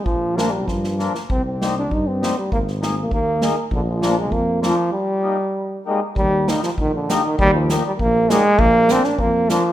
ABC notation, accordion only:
X:1
M:2/4
L:1/8
Q:1/4=99
K:Eb
V:1 name="Accordion"
z [F,B,D] z [F,B,D] | z [G,CE] z [G,CE] | z [A,B,E] z [A,B,E] | z [F,B,D] z [F,B,D] |
z [G,B,E] z [G,B,E] | z [G,B,E] z [G,B,E] | z [G,B,E] z [G,B,E] | z [F,B,D] z [F,B,D] |]